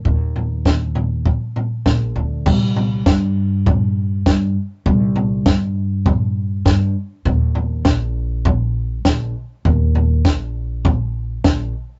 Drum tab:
CC |--------|x-------|--------|--------|
SD |--o---o-|--o---o-|--o---o-|--o---o-|
FT |oooooooo|oo--o---|oo--o---|oo--o---|
BD |o-o-o-o-|o-o-o-o-|o-o-o-o-|o-o-o-o-|

CC |--------|
SD |--o---o-|
FT |oo--o---|
BD |o-o-o-o-|